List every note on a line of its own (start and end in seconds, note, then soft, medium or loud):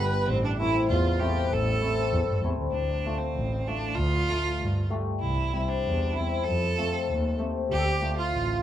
0.00 0.33 G3 medium
0.00 0.13 B3 medium
0.00 0.13 D4 medium
0.00 0.29 B4 medium
0.27 0.64 A1 loud
0.27 0.43 C4 loud
0.27 0.45 C4 medium
0.43 0.58 D4 medium
0.43 0.56 D4 medium
0.57 0.75 A3 medium
0.57 0.75 C4 medium
0.57 0.87 E4 loud
0.57 0.88 E4 medium
0.57 0.75 E4 medium
0.89 1.27 E2 loud
0.89 1.21 F4 medium
0.89 1.46 F4 medium
1.20 1.36 A3 medium
1.20 1.36 C4 medium
1.20 1.36 E4 medium
1.20 1.54 G4 medium
1.44 1.51 B4 medium
1.51 1.89 A1 medium
1.51 2.40 A4 medium
1.51 2.45 A4 loud
1.81 1.97 A3 medium
1.81 1.98 C4 medium
1.81 1.97 E4 medium
2.12 2.22 E2 loud
2.27 2.42 G2 medium
2.43 2.57 E2 medium
2.43 2.59 A3 medium
2.43 2.60 C4 medium
2.43 2.59 E4 medium
2.59 2.73 D2 medium
2.72 3.12 D2 medium
2.72 3.20 D4 medium
3.06 3.22 A3 medium
3.06 3.21 D4 medium
3.06 3.21 F4 medium
3.18 3.69 C4 medium
3.36 3.74 A1 medium
3.67 3.83 A3 medium
3.67 3.83 D4 soft
3.67 3.97 D4 medium
3.67 3.83 F4 medium
3.95 4.34 D2 medium
3.95 4.90 F4 loud
4.29 4.45 A3 medium
4.29 4.45 D4 medium
4.29 4.45 F4 medium
4.61 4.98 G2 medium
4.90 5.06 A3 medium
4.90 5.07 D4 medium
4.90 5.06 G4 medium
5.20 5.60 C2 medium
5.20 5.59 E4 medium
5.53 6.14 G3 medium
5.53 5.69 C4 soft
5.53 5.69 E4 medium
5.59 5.70 E4 medium
5.69 6.15 D4 medium
5.85 6.22 E2 medium
6.13 6.51 G3 medium
6.13 6.31 C4 medium
6.13 6.45 E4 medium
6.13 6.31 E4 medium
6.44 6.84 F2 medium
6.44 7.38 A4 loud
6.78 6.93 A3 medium
6.78 6.93 C4 medium
6.78 6.93 F4 medium
7.10 7.47 D#2 medium
7.38 7.55 A3 medium
7.38 7.54 C4 medium
7.38 7.54 G4 medium
7.70 8.07 D2 medium
7.70 7.77 G4 medium
7.70 8.14 G4 loud
7.77 7.84 A4 medium
7.85 8.18 G4 medium
8.01 8.17 A3 medium
8.01 8.17 D4 medium
8.01 8.17 F4 medium
8.18 8.62 F4 medium
8.33 8.62 A1 medium